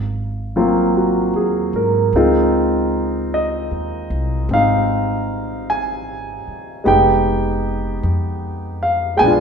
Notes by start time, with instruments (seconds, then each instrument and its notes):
Already playing: upright bass G#1, grand piano F5
0.56 grand piano F#3 A#3 C4 F4
0.97 grand piano F#4
1.33 upright bass D#2, grand piano G#4
1.73 upright bass G#2, grand piano A#4
2.13 upright bass C#2, grand piano G#3 C4 D#4 F4
3.34 grand piano D#5
3.71 upright bass D#2
4.10 upright bass C2
4.49 upright bass G#1, grand piano C4
4.54 grand piano D#4 F5
5.70 grand piano G#5
6.47 muted upright bass stroke
6.84 upright bass F1, grand piano G#3 B3 D#4 G4 G5
8.03 upright bass F2
8.83 grand piano F5
9.17 upright bass A#1, grand piano G#3 B3 G5 G#5
9.24 grand piano D4 F4